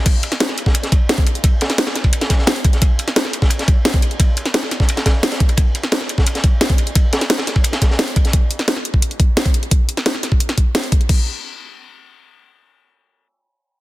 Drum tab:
CC |x---------------|----------------|----------------|----------------|
RD |x-x-x-x-x-x-x-x-|x-x-xx-xx-x-x-x-|x-x-x-x-x-x-x-x-|x-x-x-x-x-x-xx-x|
HH |x-xxx-x-xxx-xxxx|x-xxx-x-xxx-xxxx|x-xxx-x-xxx-xxxx|x-xxx-x-xxx-xxxx|
SD |---ooo-o-o--o---|--ooooo--oooo--o|---ooo-o-o--o---|---ooooo-oo-oo--|
BD |o------o--o--o--|o------o--o---o-|o------o--o--o--|o------o--o---o-|

CC |----------------|----------------|----------------|----------------|
RD |x-x-x-x-x-x-x-x-|x-x-xx-xx-x-x-x-|----------------|----------------|
HH |x-xxx-x-xxx-xxxx|x-xxx-x-xxx-xxxx|x-xxx-x-xxx-xxxx|x-xxx-x-xxx-xxxx|
SD |---ooo-o-o--o---|--ooooo--oooo--o|---ooo------o---|---oooo--o--o---|
BD |o------o--o--o--|o------o--o---o-|o------o--o--o--|o------o--o---o-|

CC |x---------------|----------------|
RD |----------------|----------------|
HH |----------------|----------------|
SD |----------------|----------------|
BD |o---------------|----------------|